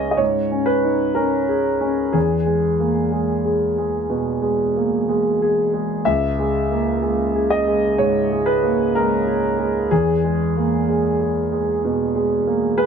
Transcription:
grand piano
Already playing: C#2 C#4 D#4 G#4 D#5 E5
0.11 D#5
0.17 G#2 C#5
0.51 C#4
0.66 B4
0.84 D#4
1.15 C#4 A#4
1.48 G#4
1.81 C#4
2.12 E2 G#4
2.45 G#3
2.80 A#3
3.12 G#3
3.45 G#4
3.78 G#3
4.10 B2
4.42 G#3
4.76 A#3
5.09 G#3
5.42 G#4
5.74 G#3
6.05 C#2 E5
6.39 G#3
6.71 A#3
7.02 G#3
7.36 G#4
7.50 D#5
7.68 G#3
7.98 G#2 C#5
8.32 G#3
8.46 B4
8.63 A#3
8.95 G#3 A#4
9.27 G#4
9.59 G#3
9.91 E2 G#4
10.24 G#3
10.57 A#3
10.89 G#3
11.21 G#4
11.52 G#3
11.85 B2
12.15 G#3
12.47 A#3
12.78 G#3 B4

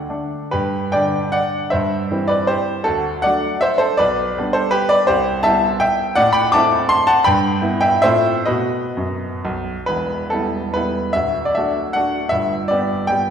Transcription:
grand piano
Already playing: D2 D3 A3 D4 F#5 G5
0.09 D3 A3 D4
0.51 G2 G4 B4
0.92 D3 G3 D4 D5 G5
1.32 D5 F#5
1.70 G2 C5 E5
2.11 E3 G3 C4
2.28 B4 D5
2.47 G4 C5
2.84 D2 F#4 A4
3.22 F#3 A3 D4 D5 F#5
3.61 C5 E5
3.78 A4 C5
3.97 B1 B4 D5
4.38 G3 B3 D4
4.53 A4 C5
4.71 G4 B4
4.89 B4 D5
5.07 C2 G4 C5
5.43 G3 B3 E4 E5 A5
5.80 E5 G5
6.15 A2 D5 F#5
6.33 G5 B5
6.52 A3 C4 E4 A5 D6
6.89 A5 C6
7.07 F#5 A5
7.24 G2 G5 B5
7.62 B3 E4
7.81 E5 G5
8.02 A2 A3 C4 F4 C5 E5
8.46 B2 B3 F#4 B4 D#5
8.97 F#2
9.45 B1
9.86 E1 E2 B4
10.30 G3 B3 E4 A4
10.74 G3 B3 E4 B4
11.13 D1 D2 E5
11.45 D5
11.55 A3 D4 F#4 E5
11.93 A3 D4 F#4 F#5
12.29 G1 G2 E5
12.68 G3 B3 G4 D5
13.07 G3 B3 G4 G5

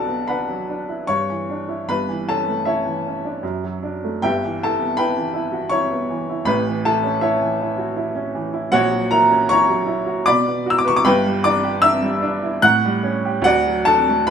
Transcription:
upright piano
Already playing: B1 F#3 D4 F#4 A4 D5 F#5 A5
0.07 B3
0.28 D4 B4 F#5 B5
0.49 F#3
0.69 D4
0.89 E4
1.07 G2 C#5 C#6
1.30 E3
1.50 D4
1.69 E4
1.88 G1 G2 B4 B5
2.09 E3
2.29 C#4 A4 A5
2.48 A3
2.65 C#4 E4 C#5 E5
2.86 E3
3.07 C#4
3.25 D4
3.43 F#2
3.64 F#3
3.83 D4
4.04 A3
4.22 G1 G2 G4 E5 G5
4.45 E3
4.63 E4 A4 A5
4.80 B3
4.97 E4 B4 G5 B5
5.16 E3
5.34 E4
5.52 F#4
5.69 E4 C#5 C#6
5.91 B3
6.10 E3
6.29 E4
6.45 A1 A2 B4 B5
6.67 E3
6.85 E4 A4 A5
7.04 C#4
7.21 E4 C#5 E5
7.42 E3
7.61 E4
7.78 F#4
7.97 E4
8.15 C#4
8.35 E3
8.53 E4
8.72 A#1 A#2 F#4 C#5 F#5
8.91 F#3
9.11 E4 A#4 A#5
9.30 C#4
9.49 E4 C#5 A#5 C#6
9.69 F#3
9.86 E4
10.06 F#4
10.26 B2 D5 B5 D6
10.46 B3
10.66 F#4 E6
10.78 D6
10.85 B4 C#6
10.96 D6
11.05 G1 G2 B4 G5 B5
11.26 G3
11.44 D4 D5 D6
11.64 G4
11.82 D4 E5 E6
12.02 G3
12.22 D4
12.43 E4
12.62 A2 F#5 F#6
12.85 G3
13.03 C#4
13.25 G4
13.42 D2 F#4 D5 F#5
13.67 F#3
13.85 D4 A4 A5
14.08 A3
14.27 B5

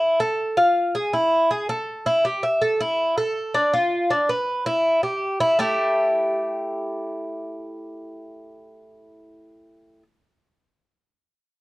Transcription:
cuban tres
Already playing: E4
0.20 A4
0.57 F4
0.95 G#4
1.13 E4
1.51 G#4
1.69 A4
2.06 E4
2.25 G4
2.43 E5
2.62 A4
2.81 E4
3.18 A4
3.55 D4
3.74 F4
4.11 D4
4.29 B4
4.66 E4
5.03 G4
5.40 E4
5.59 A3 E4 G4

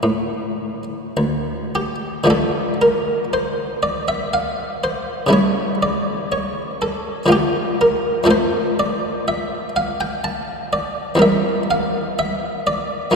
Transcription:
harpsichord
Already playing: D4
0.03 A2
1.17 D2
1.75 G4
2.24 D3 F3 A3 D4
2.30 A4
2.82 A#4
3.33 C5
3.83 D5
4.08 E5
4.34 F5
4.84 C5
5.27 C#3 G3 A3 E4
5.33 C#5
5.83 D5
6.32 C#5
6.82 A4
7.26 D3 F3 A3 F4
7.32 G4
7.81 A#4
8.24 F2 F3 A3 A4
8.31 C5
8.80 D5
9.28 E5
9.76 F5
10.01 G5
10.24 A5
10.73 D5
11.15 E2 G3 C4 A#4
11.22 E5
11.71 F5
12.19 E5
12.67 D5
13.11 F2 A3

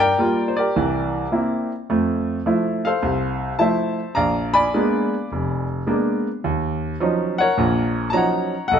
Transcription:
grand piano
Already playing: G2
0.00 A#4 D5 G5
0.18 G3 A#3 F4
0.48 C5
0.57 G4 A#4 D5
0.76 C2 E3
1.32 A#3 C4 E4
1.90 F2 A3
2.46 F3 A3 E4
2.85 A4 C5 F5
3.03 C2
3.59 F3 A3 E4 C5 E5 A5
4.15 A#1 D5 F5 A#5
4.54 D5 G#5 B5
4.74 G#3 A#3 B3 D4
5.32 F1
5.87 G#3 A#3 B3 D4
6.44 D#2
7.00 F3 F#3 C#4 D#4
7.38 A#4 C#5 F#5
7.57 A#1 A#2
8.10 F3 F#3 C#4 A5 A#5
8.14 D#4 C#5 F#5
8.68 B1 F#5
8.73 A4 D#5

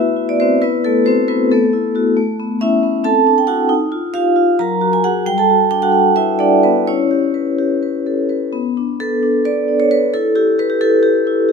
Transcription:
vibraphone
Already playing: A3 B3 E4 F#4 B4 E5
0.16 E4
0.29 D5
0.40 C4 F#4 C5
0.62 B3 E4 B4
0.84 A3 E4 A4
1.05 C4 F#4 C5
1.28 B3 E4 B4
1.51 A3 B3 A4
1.73 E4
1.95 E4 F#4
2.17 A3
2.39 B3
2.61 C#4 E4 E5
2.83 B3
3.04 C4 A4 A5
3.27 D4
3.38 G5
3.47 D4 E4 F#4 F#5
3.69 D#4
3.92 F4
4.14 F4 G4 F5
4.36 F4
4.59 F#3 A#4 A#5
4.81 F#4
4.93 G#5
5.04 F#4 G#4 F#5
5.26 G3 G5
5.38 A4 A5
5.50 F#4
5.71 D4 G5
5.82 F#4 F#5
5.92 F#4
6.16 E4 B4 E5
6.39 D4 A4 D5
6.63 B3 B4
6.87 C#4 E4 C#5
7.11 G4
7.34 B4
7.59 G4
7.83 B4
8.06 A4
8.29 B4
8.53 B3
8.77 D4
9.00 A4 B4
9.23 D4
9.45 B4 D5
9.68 D4
9.80 C#5
9.91 B4
10.14 E4 A4
10.36 E4 G4
10.58 G4 B4
10.70 G4
10.81 E4 A4
11.03 G4
11.27 E4
11.49 G4

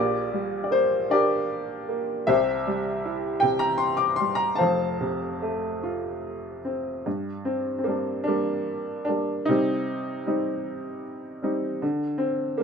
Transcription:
upright piano
Already playing: A#1 A#2 G4 A#4 D5
0.33 G3
0.64 D5
0.71 A#3 C5
1.10 D4 G4 A#4 D5
1.89 A#3
2.27 C2 C3 G4 C5 E5
2.67 G3
3.05 E4
3.40 C3 G5
3.59 A#5
3.78 C6
3.97 D6
4.16 C6
4.20 G3
4.35 A#5
4.55 C5 F5 A5
4.60 F1 F2
5.01 C3
5.42 A3
5.83 F4
6.65 C4
7.06 G2
7.45 C4
7.79 C4
7.84 G3 A#3
7.88 D4
8.24 G3 D4
8.28 A#3
9.05 G3 D4
9.09 A#3 D4
9.45 C3 G3 C4 D#4
10.26 G3 C4 D#4
11.42 G3 C4 D#4
11.82 D3
12.18 C4
12.58 G3 A#3

